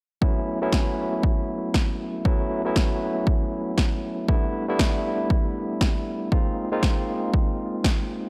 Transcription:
0.21 F#3 A3 B3 C#4 E4, kick
0.61 F#3 A3 B3 C#4 E4
0.73 kick, snare
1.23 kick
1.74 kick, snare
2.25 F#3 A3 B3 C#4 E4, kick
2.65 F#3 A3 B3 C#4 E4
2.76 kick, snare
3.27 kick
3.78 kick, snare
4.28 G3 A3 B3 D4 E4, kick
4.68 G3 A3 B3 D4 E4
4.79 kick, snare
5.30 kick
5.81 kick, snare
6.32 G#3 A#3 C4 D#4 F4, kick
6.71 G#3 A#3 C4 D#4 F4
6.83 kick, snare
7.34 kick
7.84 kick, snare

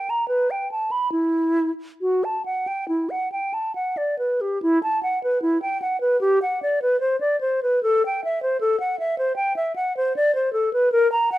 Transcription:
Already playing: G5
0.10 A#5
0.28 B4
0.51 G5
0.72 A5
0.92 B5
1.12 E4
2.01 F#4
2.24 A5
2.45 F#5
2.67 G5
2.88 E4
3.10 F#5
3.32 G5
3.54 A5
3.75 F#5
3.97 D5
4.19 B4
4.41 G4
4.62 E4
4.83 A5
5.03 F#5
5.24 B4
5.42 E4
5.62 G5
5.82 F#5
6.01 B4
6.21 G4
6.42 F#5
6.63 D5
6.82 B4
7.00 C5
7.21 D5
7.41 C5
7.63 B4
7.83 A4
8.06 G5
8.24 E5
8.43 C5
8.61 A4
8.80 F#5
8.99 E5
9.18 C5
9.36 G5
9.56 E5
9.76 F#5
9.97 C5
10.16 D5
10.35 C5
10.53 A4
10.73 B4
10.92 A#4
11.12 A#5
11.32 F#5

